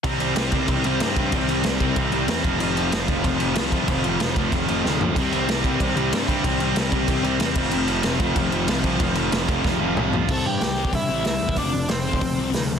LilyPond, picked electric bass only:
\new Staff \with { instrumentName = "Picked electric bass" } { \clef bass \time 4/4 \key f \lydian \tempo 4 = 188 c,4 c,8 c,8 c,8 c,8 g,4 | c,4 c,8 c,8 c,8 c,8 e,8 f,,8 | f,,4 f,,8 f,,8 f,,8 f,,8 c,4 | f,,4 f,,8 f,,8 f,,8 f,,8 d,4 |
c,4 c,8 c,8 c,8 c,8 g,4 | c,4 c,8 c,8 c,8 c,8 e,8 f,,8 | f,,4 f,,8 f,,8 f,,8 f,,8 c,4 | f,,4 f,,8 f,,8 f,,8 f,,8 c,4 |
c,8 g,8 c,4 g,8 a,,8 c,8 e,8 | f,,8 f,,8 f,,4 f,,8 c,8 d,4 | }